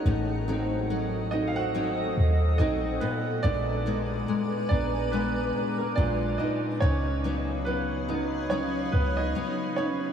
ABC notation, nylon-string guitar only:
X:1
M:4/4
L:1/8
Q:"Swing 16ths" 1/4=71
K:Bbphr
V:1 name="Nylon-string guitar"
[=A,,E] [^F,=CE] F, C [F,CE]2 [F,CE] B,, | [B,,=D] [A,CD] A, C [A,CD]2 B,, D | [D,E] [G,CE] G, C [G,CE]2 [G,CE] E |]